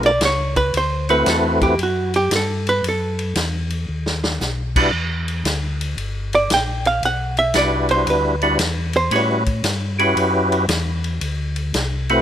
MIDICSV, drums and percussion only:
0, 0, Header, 1, 2, 480
1, 0, Start_track
1, 0, Tempo, 524017
1, 675, Time_signature, 4, 2, 24, 8
1, 11192, End_track
2, 0, Start_track
2, 0, Title_t, "Drums"
2, 28, Note_on_c, 9, 51, 45
2, 119, Note_off_c, 9, 51, 0
2, 190, Note_on_c, 9, 44, 61
2, 190, Note_on_c, 9, 51, 80
2, 194, Note_on_c, 9, 38, 84
2, 281, Note_off_c, 9, 44, 0
2, 281, Note_off_c, 9, 51, 0
2, 286, Note_off_c, 9, 38, 0
2, 515, Note_on_c, 9, 51, 53
2, 516, Note_on_c, 9, 36, 52
2, 606, Note_off_c, 9, 51, 0
2, 608, Note_off_c, 9, 36, 0
2, 675, Note_on_c, 9, 51, 66
2, 767, Note_off_c, 9, 51, 0
2, 997, Note_on_c, 9, 51, 48
2, 1089, Note_off_c, 9, 51, 0
2, 1155, Note_on_c, 9, 44, 52
2, 1155, Note_on_c, 9, 51, 74
2, 1160, Note_on_c, 9, 38, 74
2, 1247, Note_off_c, 9, 44, 0
2, 1247, Note_off_c, 9, 51, 0
2, 1251, Note_off_c, 9, 38, 0
2, 1479, Note_on_c, 9, 51, 49
2, 1481, Note_on_c, 9, 36, 65
2, 1570, Note_off_c, 9, 51, 0
2, 1573, Note_off_c, 9, 36, 0
2, 1638, Note_on_c, 9, 51, 64
2, 1729, Note_off_c, 9, 51, 0
2, 1957, Note_on_c, 9, 51, 51
2, 2049, Note_off_c, 9, 51, 0
2, 2116, Note_on_c, 9, 44, 61
2, 2116, Note_on_c, 9, 51, 83
2, 2121, Note_on_c, 9, 38, 76
2, 2208, Note_off_c, 9, 44, 0
2, 2208, Note_off_c, 9, 51, 0
2, 2213, Note_off_c, 9, 38, 0
2, 2442, Note_on_c, 9, 51, 50
2, 2534, Note_off_c, 9, 51, 0
2, 2603, Note_on_c, 9, 51, 65
2, 2694, Note_off_c, 9, 51, 0
2, 2919, Note_on_c, 9, 51, 49
2, 3011, Note_off_c, 9, 51, 0
2, 3073, Note_on_c, 9, 44, 54
2, 3073, Note_on_c, 9, 51, 76
2, 3077, Note_on_c, 9, 38, 77
2, 3164, Note_off_c, 9, 44, 0
2, 3164, Note_off_c, 9, 51, 0
2, 3169, Note_off_c, 9, 38, 0
2, 3393, Note_on_c, 9, 51, 49
2, 3484, Note_off_c, 9, 51, 0
2, 3721, Note_on_c, 9, 38, 62
2, 3812, Note_off_c, 9, 38, 0
2, 3881, Note_on_c, 9, 38, 92
2, 3973, Note_off_c, 9, 38, 0
2, 4036, Note_on_c, 9, 44, 73
2, 4041, Note_on_c, 9, 38, 62
2, 4128, Note_off_c, 9, 44, 0
2, 4132, Note_off_c, 9, 38, 0
2, 4360, Note_on_c, 9, 36, 76
2, 4360, Note_on_c, 9, 49, 85
2, 4451, Note_off_c, 9, 36, 0
2, 4451, Note_off_c, 9, 49, 0
2, 4835, Note_on_c, 9, 51, 52
2, 4927, Note_off_c, 9, 51, 0
2, 4993, Note_on_c, 9, 44, 65
2, 4993, Note_on_c, 9, 51, 73
2, 4998, Note_on_c, 9, 38, 72
2, 5085, Note_off_c, 9, 44, 0
2, 5085, Note_off_c, 9, 51, 0
2, 5089, Note_off_c, 9, 38, 0
2, 5321, Note_on_c, 9, 51, 55
2, 5412, Note_off_c, 9, 51, 0
2, 5475, Note_on_c, 9, 51, 63
2, 5567, Note_off_c, 9, 51, 0
2, 5797, Note_on_c, 9, 51, 49
2, 5889, Note_off_c, 9, 51, 0
2, 5954, Note_on_c, 9, 44, 64
2, 5954, Note_on_c, 9, 51, 83
2, 5959, Note_on_c, 9, 38, 86
2, 6046, Note_off_c, 9, 44, 0
2, 6046, Note_off_c, 9, 51, 0
2, 6051, Note_off_c, 9, 38, 0
2, 6277, Note_on_c, 9, 51, 55
2, 6369, Note_off_c, 9, 51, 0
2, 6438, Note_on_c, 9, 51, 63
2, 6529, Note_off_c, 9, 51, 0
2, 6749, Note_on_c, 9, 51, 50
2, 6841, Note_off_c, 9, 51, 0
2, 6904, Note_on_c, 9, 44, 58
2, 6904, Note_on_c, 9, 51, 74
2, 6908, Note_on_c, 9, 38, 70
2, 6995, Note_off_c, 9, 44, 0
2, 6995, Note_off_c, 9, 51, 0
2, 7000, Note_off_c, 9, 38, 0
2, 7224, Note_on_c, 9, 51, 51
2, 7316, Note_off_c, 9, 51, 0
2, 7390, Note_on_c, 9, 51, 59
2, 7481, Note_off_c, 9, 51, 0
2, 7708, Note_on_c, 9, 51, 49
2, 7800, Note_off_c, 9, 51, 0
2, 7866, Note_on_c, 9, 44, 60
2, 7866, Note_on_c, 9, 51, 85
2, 7871, Note_on_c, 9, 38, 81
2, 7958, Note_off_c, 9, 44, 0
2, 7958, Note_off_c, 9, 51, 0
2, 7962, Note_off_c, 9, 38, 0
2, 8181, Note_on_c, 9, 51, 51
2, 8273, Note_off_c, 9, 51, 0
2, 8346, Note_on_c, 9, 51, 66
2, 8437, Note_off_c, 9, 51, 0
2, 8668, Note_on_c, 9, 51, 50
2, 8674, Note_on_c, 9, 36, 65
2, 8760, Note_off_c, 9, 51, 0
2, 8766, Note_off_c, 9, 36, 0
2, 8828, Note_on_c, 9, 44, 63
2, 8828, Note_on_c, 9, 51, 75
2, 8832, Note_on_c, 9, 38, 76
2, 8919, Note_off_c, 9, 44, 0
2, 8919, Note_off_c, 9, 51, 0
2, 8924, Note_off_c, 9, 38, 0
2, 9154, Note_on_c, 9, 51, 51
2, 9245, Note_off_c, 9, 51, 0
2, 9314, Note_on_c, 9, 51, 60
2, 9406, Note_off_c, 9, 51, 0
2, 9637, Note_on_c, 9, 51, 47
2, 9728, Note_off_c, 9, 51, 0
2, 9788, Note_on_c, 9, 44, 63
2, 9788, Note_on_c, 9, 51, 81
2, 9793, Note_on_c, 9, 38, 88
2, 9880, Note_off_c, 9, 44, 0
2, 9880, Note_off_c, 9, 51, 0
2, 9885, Note_off_c, 9, 38, 0
2, 10113, Note_on_c, 9, 51, 50
2, 10205, Note_off_c, 9, 51, 0
2, 10270, Note_on_c, 9, 51, 66
2, 10362, Note_off_c, 9, 51, 0
2, 10588, Note_on_c, 9, 51, 54
2, 10680, Note_off_c, 9, 51, 0
2, 10753, Note_on_c, 9, 44, 61
2, 10753, Note_on_c, 9, 51, 74
2, 10758, Note_on_c, 9, 38, 82
2, 10845, Note_off_c, 9, 44, 0
2, 10845, Note_off_c, 9, 51, 0
2, 10849, Note_off_c, 9, 38, 0
2, 11077, Note_on_c, 9, 51, 50
2, 11169, Note_off_c, 9, 51, 0
2, 11192, End_track
0, 0, End_of_file